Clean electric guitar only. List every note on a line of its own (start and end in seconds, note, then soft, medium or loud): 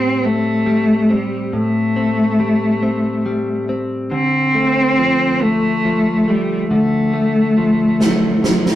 0.00 1.52 A2 medium
0.00 0.65 G3 soft
0.00 0.21 C4 soft
0.23 1.09 C4 soft
0.66 2.38 G3 soft
1.10 1.95 C4 soft
1.53 4.12 A2 medium
1.96 2.81 C4 soft
2.40 3.25 G3 medium
2.83 3.68 C4 soft
3.26 4.21 G3 medium
3.69 4.21 C4 soft
4.11 6.71 D3 medium
4.55 5.40 A3 medium
4.99 5.84 F3 medium
5.42 6.27 A3 soft
5.85 7.56 F3 medium
6.28 7.12 A3 soft
6.71 8.75 D3 medium
7.14 7.99 A3 soft
7.58 8.42 F3 soft
8.00 8.75 A3 soft
8.43 8.75 F3 soft